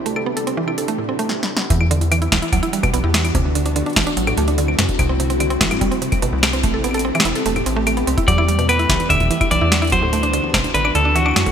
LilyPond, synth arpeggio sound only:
\new Staff \with { instrumentName = "Synth arpeggio sound" } { \clef bass \time 4/4 \key e \minor \tempo 4 = 146 a16 a'16 b16 a'16 c'16 e16 e'16 a'16 a16 a,16 c'16 a16 r4 | e16 e,16 d16 e,16 e16 e'16 e16 e'16 fis16 e'16 g16 b,16 b16 e'16 e16 e,16 | c16 d,16 d16 d'16 d16 d'16 e16 d'16 fis16 a,16 a16 d'16 d16 d,16 c16 d,16 | c16 c'16 c16 c'16 d16 c'16 e16 g,16 g16 c'16 c16 c,16 b,16 c,16 c16 c'16 |
a16 a'16 b16 a'16 c'16 e16 e'16 a'16 a16 a,16 c'16 a16 a16 b16 c'16 e'16 | fis16 e'16 g16 b,16 b16 e'16 e16 e,16 d16 e,16 e16 e'16 e16 e'16 fis16 e'16 | fis16 a,16 a16 d'16 d16 d,16 c16 d,16 d16 d'16 d16 d'16 e16 d'16 fis16 a,16 | }